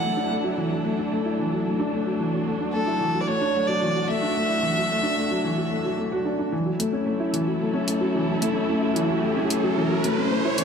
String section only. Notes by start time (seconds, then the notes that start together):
Already playing: F#3 D4 E4 A4
2.02 F#4
6.52 F#3
6.65 E4
6.74 C#4
6.96 A4
10.60 G#4